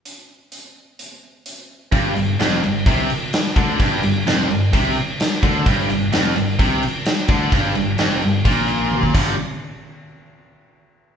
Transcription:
<<
  \new Staff \with { instrumentName = "Distorted electric guitar" } { \clef bass \time 4/4 \key c \major \tempo 4 = 129 r1 | g,8 g,8 f,8 g,8 c8 r4 d8 | g,8 g,8 f,8 g,8 c8 r4 d8 | g,8 g,8 f,8 g,8 c8 r4 d8 |
g,8 g,8 f,8 g,8 bes,4. <g, d g>8 | r1 | }
  \new Staff \with { instrumentName = "Distorted electric guitar" } { \clef bass \time 4/4 \key c \major r1 | g,8 g,8 f,8 g,8 c8 r4 d8 | g,8 g,8 f,8 g,8 c8 r4 d8 | g,8 g,8 f,8 g,8 c8 r4 d8 |
g,8 g,8 f,8 g,8 bes,4. <g, d g>8 | r1 | }
  \new Staff \with { instrumentName = "Picked electric bass" } { \clef bass \time 4/4 \key c \major r1 | g,,8 g,,8 f,,8 g,,8 c,8 r4 d,8 | g,,8 g,,8 f,,8 g,,8 c,8 r4 d,8 | g,,8 g,,8 f,,8 g,,8 c,8 r4 d,8 |
g,,8 g,,8 f,,8 g,,8 bes,,4. g,,8 | r1 | }
  \new DrumStaff \with { instrumentName = "Drums" } \drummode { \time 4/4 hh4 hh4 hh4 hh4 | <cymc bd>8 cymc8 <cymc sn>8 cymc8 <cymc bd>8 cymc8 <cymc sn>8 <cymc bd>8 | <cymc bd>8 cymc8 <cymc sn>8 cymc8 <cymc bd>8 cymc8 <cymc sn>8 <cymc bd>8 | <cymc bd>8 cymc8 <cymc sn>8 cymc8 <cymc bd>8 cymc8 <cymc sn>8 <cymc bd>8 |
<cymc bd>8 cymc8 <cymc sn>8 cymc8 <cymc bd>8 cymc8 tommh16 bd16 <cymc bd>8 | r4 r4 r4 r4 | }
>>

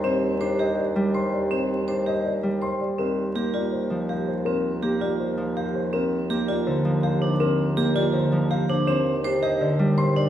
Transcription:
<<
  \new Staff \with { instrumentName = "Grand piano" } { \time 4/4 \key ees \major \tempo 4 = 163 c''8 r8 g'8 ees''8 d''8 r8 c'''8 d''8 | c''8 r8 g'8 ees''8 d''8 r8 c'''8 d''8 | bes'8 r8 g'8 d''8 c''8 r8 f''8 c''8 | bes'8 r8 g'8 d''8 c''8 r8 f''8 c''8 |
bes'8 r8 g'8 d''8 c''8 r8 f''8 c''8 | bes'8 r8 g'8 d''8 c''8 r8 f''8 c''8 | c''8 r8 g'8 ees''8 d''8 r8 c'''8 d''8 | }
  \new Staff \with { instrumentName = "Vibraphone" } { \time 4/4 \key ees \major c'8 r8 c''8 g'8 r4 c''8 r8 | c'8 r8 c''8 g'8 r4 c''8 r8 | c'8 r8 g'8 f'8 r4 g'8 r8 | c'8 r8 g'8 f'8 r4 g'8 r8 |
c'8 r8 g'8 f'8 r4 g'8 d'8 | c'8 r8 g'8 f'8 r4 g'8 d'8 | c'8 r8 c''8 g'8 r4 c''8 d'8 | }
  \new Staff \with { instrumentName = "Harp" } { \clef bass \time 4/4 \key ees \major <g d'>4 d'4. g4.~ | g4 d'4. g4.~ | g4 bes4. f4.~ | f4 bes4. f4.~ |
f4 bes4 d8 f4.~ | f4 bes4 d8 f4. | r4 d'4 d8 g4. | }
  \new Staff \with { instrumentName = "Bassoon" } { \clef bass \time 4/4 \key ees \major ees,1~ | ees,1 | ees,1~ | ees,1~ |
ees,1~ | ees,1 | ees,1 | }
>>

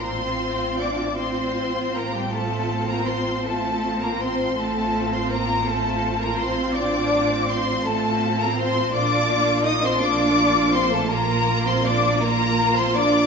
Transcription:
<<
  \new Staff \with { instrumentName = "Violin section" } { \time 12/8 \key f \mixolydian \tempo 4. = 54 c'''4 d'''8 c'''4 bes''16 g''16 a''8. bes''16 c'''8 a''8. bes''16 c'''8 | a''8. c'''16 bes''8 a''8. bes''16 c'''8 d'''4 c'''8 a''8. bes''16 c'''8 | d'''4 ees'''16 c'''16 d'''4 c'''16 a''16 bes''8. c'''16 d'''8 bes''8. c'''16 d'''8 | }
  \new Staff \with { instrumentName = "Violin section" } { \time 12/8 \key f \mixolydian c''4 d''8 c''4 bes'16 g'16 a'8. bes'16 c''8 a'8. bes'16 c''8 | a'8. c''16 bes'8 a'8. bes'16 c''8 d''4 c''8 a'8. bes'16 c''8 | d''4 ees''16 c''16 d''4 c''16 a'16 bes'8. c''16 d''8 bes'8. c''16 d''8 | }
  \new Staff \with { instrumentName = "Viola section" } { \time 12/8 \key f \mixolydian <c' f'>4. <c' f'>4. <c' f'>4. <c' f'>4. | <c' f'>4. <c' f'>2. <c' f'>4. | <bes f'>4. <bes f'>4. <bes f'>4. <bes f'>4. | }
  \new Staff \with { instrumentName = "Cello section" } { \time 12/8 \key f \mixolydian c'4 d'8 c'4 bes16 g16 a8. bes16 c'8 a8. bes16 c'8 | a8. c'16 bes8 a8. bes16 c'8 d'4 c'8 a8. bes16 c'8 | d'4 ees'16 c'16 d'4 c'16 a16 bes8. c'16 d'8 bes8. c'16 d'8 | }
  \new Staff \with { instrumentName = "Double bass section" } { \clef bass \time 12/8 \key f \mixolydian a,,1. | a,,1. | bes,,1. | }
>>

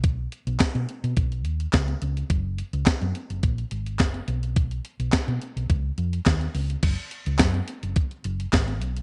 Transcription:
<<
  \new Staff \with { instrumentName = "Fingered electric bass" } { \clef bass \time 4/4 \key fis \major \tempo 4 = 106 b,,8. b,,16 r16 b,16 r16 b,16 b,,8 dis,8 cis,8 cis,8 | fis,,8. cis,16 r16 fis,16 r16 fis,,16 ais,,8 gis,,8 fis,,8 b,,8~ | b,,8. b,,16 r16 b,16 r16 b,,16 cis,8 eis,8 dis,8 cis,8 | fis,,16 r8 cis,16 fis,8 r16 fis,,16 r8 fis,,8 gis,,8 b,,8 | }
  \new DrumStaff \with { instrumentName = "Drums" } \drummode { \time 4/4 <hh bd>8 hh16 hh16 <hc hh bd sn>16 hh16 hh16 hh16 <hh bd>16 hh16 hh16 hh16 <hc hh bd sn>16 hh16 hh16 hh16 | <hh bd>8 hh16 hh16 <hc hh bd sn>16 hh16 hh16 hh16 <hh bd>16 hh16 hh16 hh16 <hc hh bd sn>16 hh16 hh16 hh16 | <hh bd>16 hh16 hh16 hh16 <hc hh bd sn>16 hh16 hh16 hh16 <hh bd>8 hh16 hh16 <hc hh bd sn>16 hh16 hho16 hh16 | <cymc hh bd>8 hh16 hh16 <hc hh bd sn>16 hh16 hh16 hh16 <hh bd>16 hh16 hh16 hh16 <hc hh bd sn>16 hh16 hh16 hh16 | }
>>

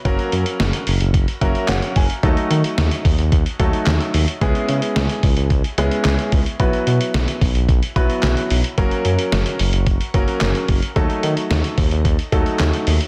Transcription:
<<
  \new Staff \with { instrumentName = "Grand piano" } { \time 4/4 \key fis \dorian \tempo 4 = 110 << { r2 r8 e''8 fis''8 gis''8 | r1 | r1 | r1 |
r1 | r1 | } \\ { <fis ais cis' fis' ais'>4. r4 <fis ais cis' fis' ais'>4 r8 | <fis a dis' fis' a'>4. r4 <fis a dis' fis' a'>4 r8 | <gis b cis' e' gis'>4. r4 <gis b cis' e' gis'>4 r8 | <fis b e' fis' b'>4. r4 <fis b e' fis' b'>4 r8 |
<fis ais cis' fis' ais'>4. r4 <fis ais cis' fis' ais'>4 r8 | <fis a dis' fis' a'>4. r4 <fis a dis' fis' a'>4 r8 | } >> }
  \new Staff \with { instrumentName = "Analog synth bass" } { \clef bass \time 4/4 \key fis \dorian fis,,16 r16 fis,16 r16 fis,,16 r16 fis,,16 fis,,16 fis,,16 r16 fis,,16 r16 fis,,16 r16 fis,,16 r16 | dis,16 r16 dis16 r16 dis,16 r16 dis,16 dis,16 dis,16 r16 dis,16 r16 dis,16 r16 dis,16 r16 | cis,16 r16 cis16 r16 cis,16 r16 cis,16 cis,16 cis,16 r16 cis,16 r16 cis,16 r16 cis,16 r16 | b,,16 r16 b,16 r16 b,,16 r16 b,,16 b,,16 b,,16 r16 b,,16 r16 b,,16 r16 b,,16 r16 |
fis,,16 r16 fis,16 r16 fis,,16 r16 fis,,16 fis,,16 fis,,16 r16 fis,,16 r16 fis,,16 r16 fis,,16 r16 | dis,16 r16 dis16 r16 dis,16 r16 dis,16 dis,16 dis,16 r16 dis,16 r16 dis,16 r16 dis,16 r16 | }
  \new DrumStaff \with { instrumentName = "Drums" } \drummode { \time 4/4 <hh bd>16 hh16 hh16 hh16 <hh sn>16 hh16 hho16 hh16 <hh bd>16 hh16 <hh bd>16 hh16 <hc hh sn>16 hh16 <hho bd>16 hh16 | <hh bd>16 hh16 hh16 hh16 <hh sn>16 hh16 <hho bd>16 hh16 <hh bd>16 hh16 <hh bd>16 hh16 <hc hh sn>16 hh16 hho16 hh16 | <hh bd>16 hh16 hh16 hh16 <hh sn>16 hh16 <hho bd>16 hh16 <hh bd>16 hh16 hh16 hh16 <hc hh sn>16 hh16 <hho bd>16 hh16 | <hh bd>16 hh16 hh16 hh16 <hh sn>16 hh16 <hho bd>16 hh16 <hh bd>16 hh16 <hh bd>16 hh16 <hc hh sn>16 hh16 hho16 hh16 |
<hh bd>16 hh16 hh16 hh16 <hh sn>16 hh16 hho16 hh16 <hh bd>16 hh16 <hh bd>16 hh16 <hc hh sn>16 hh16 <hho bd>16 hh16 | <hh bd>16 hh16 hh16 hh16 <hh sn>16 hh16 <hho bd>16 hh16 <hh bd>16 hh16 <hh bd>16 hh16 <hc hh sn>16 hh16 hho16 hh16 | }
>>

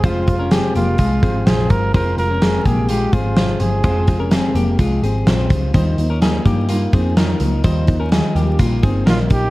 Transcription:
<<
  \new Staff \with { instrumentName = "Trumpet" } { \time 4/4 \key f \minor \tempo 4 = 126 f'4 g'8 f'4. aes'8 bes'8 | bes'8 bes'4 aes'8 g'8 f'4 aes'8~ | aes'4 r2. | r1 |
r2. f'8 g'8 | }
  \new Staff \with { instrumentName = "Clean electric guitar" } { \time 4/4 \key f \minor <f' c''>8. <des' bes'>16 <c' aes'>8 <bes g'>8 <aes f'>8 <c' aes'>8 <f' c''>4 | <f' c''>8. <des' bes'>16 <c' aes'>8 <bes g'>8 <aes f'>8 <c' aes'>8 <f' c''>4 | <f' c''>8. <des' bes'>16 <c' aes'>8 <bes g'>8 <aes f'>8 <c' aes'>8 <f' c''>4 | <ees' c''>8. <des' bes'>16 <ees' aes'>8 <bes g'>8 <bes f'>8 <c' aes'>8 <ees' bes'>4 |
<ees' c''>8. <des' bes'>16 <ees' aes'>8 <bes g'>8 <bes f'>8 <c' aes'>8 <ees' bes'>4 | }
  \new Staff \with { instrumentName = "Steel-string acoustic guitar" } { \time 4/4 \key f \minor <f, c f aes c' g'>8 <f aes c' g'>8 <f, c f aes c' g'>4 <f aes c' g'>8 <f aes c' g'>8 <f, c f aes c' g'>8 <f aes c' g'>8 | <f, c f aes c' g'>8 <f aes c' g'>8 <f, c f aes c' g'>4 <f aes c' g'>8 <f aes c' g'>8 <f, c f aes c' g'>8 <f aes c' g'>8 | <f, c f aes c' g'>8 <f aes c' g'>8 <f, c f aes c' g'>4 <f aes c' g'>8 <f aes c' g'>8 <f, c f aes c' g'>8 <f aes c' g'>8 | <ees g bes ees' f'>8 <bes ees' f'>8 <ees g bes ees' f'>4 <g bes ees' f'>8 <bes ees' f'>8 <ees g bes ees' f'>8 <bes ees' f'>8 |
<ees g bes ees' f'>8 <bes ees' f'>8 <ees g bes ees' f'>4 <g bes ees' f'>8 <bes ees' f'>8 <ees g bes ees' f'>8 <bes ees' f'>8 | }
  \new Staff \with { instrumentName = "Picked electric bass" } { \clef bass \time 4/4 \key f \minor f,,4~ f,,16 r16 f,,8 c,8 aes,,8 bes,,8 g,,8 | f,,8 f,,4 bes,,4 aes,,4 g,,8 | f,,4~ f,,16 r16 f,,8 c,8 aes,,8 bes,,8 des,8 | ees,8 ees,4 g,4 f,4 des,8 |
ees,4~ ees,16 r16 ees,8 bes,,8 g,,8 bes,,8 bes,,8 | }
  \new DrumStaff \with { instrumentName = "Drums" } \drummode { \time 4/4 <hh bd>8 <hh bd>8 <hh sn>8 hh8 <hh bd>8 <hh bd>8 <hh sn>8 <hh bd>8 | <hh bd>8 hh8 <hh sn>8 <hh bd>8 hh8 <hh bd>8 <hh sn>8 hh8 | <hh bd>8 <hh bd>8 <hh sn>8 hh8 <hh bd>8 hh8 <hh sn>8 <hh bd>8 | <hh bd>8 hh8 <hh sn>8 <hh bd>8 hh8 <hh bd>8 <hh sn>8 hh8 |
<hh bd>8 <hh bd>8 <hh sn>8 hh8 <hh bd>8 <hh bd>8 <hh sn>8 <hh bd>8 | }
>>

